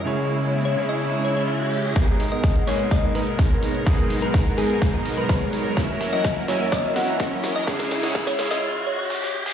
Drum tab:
HH |----------------|xxoxxxoxx-oxxxox|xxoxxxoxx-oxxxox|xxoxxxoxx-oxxxox|
SD |----------------|o---o---o---o---|o---o---o---o---|o-o-o-o-o-o-o-o-|
BD |----------------|o---o---o---o---|o---o---o---o---|o---o---o---o---|

HH |xxoxxxox--------|
SD |oooooooo----oo-o|
BD |o---o-----------|